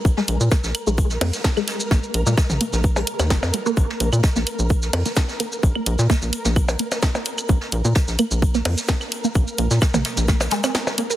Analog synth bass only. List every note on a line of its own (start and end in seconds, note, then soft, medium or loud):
0.05 0.15 A#1 loud
0.28 0.38 A#1 loud
0.40 0.49 A#2 loud
0.64 0.72 A#1 medium
0.87 1.17 A#1 medium
1.21 1.31 F2 medium
1.91 2.01 A#1 loud
2.14 2.24 A#1 loud
2.26 2.35 A#2 medium
2.50 2.58 A#1 medium
2.73 3.03 A#1 medium
3.19 3.32 D#2 loud
3.31 3.40 F1 medium
3.43 3.51 F2 medium
3.77 3.87 A#1 loud
4.00 4.10 A#1 loud
4.13 4.21 A#2 medium
4.36 4.44 A#1 medium
4.59 4.90 A#1 medium
4.93 5.03 F2 medium
5.63 5.73 A#1 loud
5.86 5.96 A#1 loud
5.99 6.07 A#2 loud
6.22 6.31 A#1 medium
6.45 6.76 A#1 medium
7.49 7.59 A#1 loud
7.72 7.82 A#1 loud
7.85 7.93 A#2 loud
8.08 8.17 A#1 medium
8.31 8.62 A#1 medium
8.65 8.75 F2 medium
9.35 9.45 A#1 loud
9.58 9.68 A#1 loud
9.71 9.79 A#2 loud
9.94 10.03 A#1 medium
10.17 10.48 A#1 loud